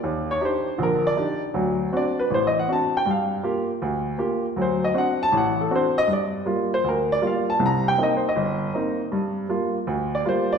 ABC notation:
X:1
M:4/4
L:1/8
Q:"Swing" 1/4=159
K:Gm
V:1 name="Upright piano"
z ^c =c2 B d2 z | z2 d =B (3c e ^f a g | f3 z4 z | c e ^f a f A c e |
d z2 c B d f a | b g (3e c e- e4 | z4 z d c d |]
V:2 name="Upright piano"
E,,2 [DEG] z [B,,,D,]2 [DEG] z | [D,,^F,]2 [CD^F] z A,,,2 [CDF] z | G,,2 [B,FG] z D,,2 [B,FG] z | [D,,^F,]2 [CD^F] z A,,,2 [CDF] z |
G,,2 [G,B,F] z D,,2 [G,B,F] z | [C,,C,]2 [B,CE] z G,,,2 [B,CE] z | G,,2 [G,B,F] z D,,2 [G,B,F] z |]